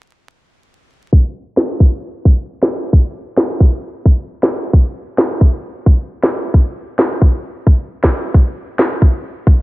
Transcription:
1.13 kick loud
1.57 snare medium
1.80 kick loud
2.25 kick medium
2.63 snare medium
2.93 kick loud
3.37 snare medium
3.60 kick loud
4.06 kick medium
4.43 snare loud
4.73 kick loud
5.18 snare loud
5.41 kick loud
5.86 kick medium
6.23 snare loud
6.54 kick loud
6.99 snare medium
7.22 kick loud
7.67 kick loud
8.04 kick medium
8.04 snare loud
8.34 kick loud
8.79 snare medium
9.02 kick medium
9.47 kick medium

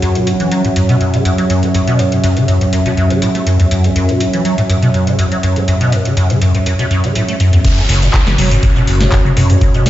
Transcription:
0.00 0.17 F#2 loud
0.00 7.61 F#3 medium
0.00 7.61 C#4 medium
0.00 7.65 F#4 medium
0.00 7.61 C#5 medium
0.00 7.65 C#5 medium
0.00 7.63 E5 medium
0.00 7.65 F#5 medium
0.00 closed hi-hat medium
0.15 0.28 B2 medium
0.15 closed hi-hat soft
0.27 0.34 F#2 loud
0.27 closed hi-hat medium
0.40 0.49 E3 medium
0.40 closed hi-hat soft
0.52 0.62 F#3 medium
0.52 closed hi-hat medium
0.65 0.68 A2 medium
0.65 closed hi-hat soft
0.76 0.83 F#2 medium
0.76 closed hi-hat medium
0.89 0.95 B2 loud
0.89 closed hi-hat soft
1.01 1.15 F#2 medium
1.01 closed hi-hat soft
1.14 1.23 C#3 loud
1.14 closed hi-hat soft
1.25 1.32 F#2 medium
1.25 closed hi-hat medium
1.38 1.45 F#3 medium
1.38 closed hi-hat soft
1.50 1.64 F#2 medium
1.50 closed hi-hat medium
1.63 1.69 A3 medium
1.63 closed hi-hat soft
1.74 1.82 F#2 medium
1.74 closed hi-hat medium
1.87 2.00 B2 loud
1.87 closed hi-hat soft
1.99 2.14 F#2 medium
1.99 closed hi-hat medium
2.12 2.22 C#3 loud
2.12 closed hi-hat soft
2.24 2.38 F#2 loud
2.24 closed hi-hat medium
2.37 2.46 C#3 loud
2.37 closed hi-hat soft
2.48 2.59 F#2 medium
2.48 closed hi-hat medium
2.61 2.65 G2 medium
2.61 closed hi-hat soft
2.73 2.80 F#2 medium
2.73 closed hi-hat medium
2.86 2.92 B2 loud
2.86 closed hi-hat soft
2.97 3.12 F#2 loud
2.97 closed hi-hat soft
3.10 3.20 C#3 loud
3.10 closed hi-hat soft
3.22 3.29 A2 medium
3.22 closed hi-hat medium
3.35 3.41 A3 medium
3.35 closed hi-hat soft
3.46 3.57 F#2 medium
3.46 closed hi-hat medium
3.60 3.66 E2 medium
3.60 closed hi-hat soft
3.71 3.86 F#2 medium
3.71 closed hi-hat medium
3.84 3.91 E2 medium
3.84 closed hi-hat soft
3.96 4.10 F#2 loud
3.96 closed hi-hat medium
4.09 4.22 B2 medium
4.09 closed hi-hat soft
4.20 4.28 F#2 loud
4.20 closed hi-hat medium
4.33 4.43 E3 medium
4.33 closed hi-hat soft
4.45 4.56 F#3 medium
4.45 closed hi-hat medium
4.58 4.62 A2 medium
4.58 closed hi-hat soft
4.69 4.77 F#2 medium
4.69 closed hi-hat medium
4.82 4.89 B2 medium
4.82 closed hi-hat soft
4.94 5.09 F#2 medium
4.94 closed hi-hat soft
5.07 5.17 C#3 loud
5.07 closed hi-hat soft
5.19 5.26 F#2 medium
5.19 closed hi-hat medium
5.32 5.38 F#3 medium
5.32 closed hi-hat soft
5.43 5.58 F#2 medium
5.43 closed hi-hat medium
5.56 5.63 A3 medium
5.56 closed hi-hat soft
5.68 5.75 F#2 medium
5.68 closed hi-hat medium
5.81 5.94 B2 loud
5.81 closed hi-hat soft
5.92 6.07 F#2 medium
5.92 closed hi-hat medium
6.05 6.15 C#3 loud
6.05 closed hi-hat soft
6.17 6.32 F#2 loud
6.17 closed hi-hat medium
6.30 6.40 C#3 medium
6.30 closed hi-hat soft
6.42 6.52 F#2 medium
6.42 closed hi-hat medium
6.55 6.59 G2 medium
6.55 closed hi-hat soft
6.66 6.73 F#2 medium
6.66 closed hi-hat medium
6.79 6.86 B2 loud
6.79 closed hi-hat soft
6.91 7.05 F#2 loud
6.91 closed hi-hat soft
7.04 7.13 C#3 loud
7.04 closed hi-hat soft
7.15 7.23 A2 medium
7.15 closed hi-hat medium
7.28 7.35 A3 medium
7.28 closed hi-hat soft
7.40 7.51 F#2 medium
7.40 closed hi-hat medium
7.53 7.59 E2 medium
7.53 closed hi-hat soft
7.64 7.79 F#2 medium
7.64 9.90 C#4 medium
7.64 9.90 F#4 medium
7.64 9.90 C#5 medium
7.64 kick loud
7.64 closed hi-hat medium
7.64 crash loud
7.64 downlifter medium
7.64 shaker medium
7.78 7.84 E2 medium
7.78 closed hi-hat soft
7.78 shaker soft
7.89 8.10 F#1 loud
7.89 8.04 F#2 loud
7.89 open hi-hat loud
8.02 8.15 B2 medium
8.02 closed hi-hat medium
8.02 shaker medium
8.14 8.21 F#2 loud
8.14 kick loud
8.14 clap loud
8.14 closed hi-hat medium
8.14 shaker medium
8.26 8.36 F#1 medium
8.26 8.36 E3 medium
8.26 snare medium
8.26 shaker soft
8.38 8.59 F#1 loud
8.38 8.49 F#3 medium
8.38 open hi-hat loud
8.38 mid tom medium
8.51 8.55 A2 medium
8.51 closed hi-hat medium
8.51 shaker medium
8.63 8.70 F#2 medium
8.63 kick loud
8.63 closed hi-hat medium
8.63 shaker medium
8.76 8.82 B2 loud
8.76 shaker soft
8.87 9.08 F#1 medium
8.87 9.02 F#2 medium
8.87 open hi-hat loud
9.00 9.10 C#3 loud
9.00 snare medium
9.00 closed hi-hat medium
9.00 shaker medium
9.11 9.19 F#2 medium
9.11 kick loud
9.11 clap loud
9.11 closed hi-hat medium
9.11 shaker medium
9.25 9.32 F#3 medium
9.25 mid tom medium
9.25 shaker soft
9.37 9.51 F#2 medium
9.37 9.57 F#2 medium
9.37 open hi-hat loud
9.37 mid tom medium
9.50 9.56 A3 medium
9.50 closed hi-hat medium
9.50 shaker medium
9.61 9.69 F#2 medium
9.61 kick loud
9.61 closed hi-hat medium
9.61 shaker medium
9.74 9.87 B2 loud
9.74 closed hi-hat soft
9.74 shaker soft
9.86 9.90 F#1 loud
9.86 9.90 F#2 medium
9.86 snare medium
9.86 open hi-hat loud

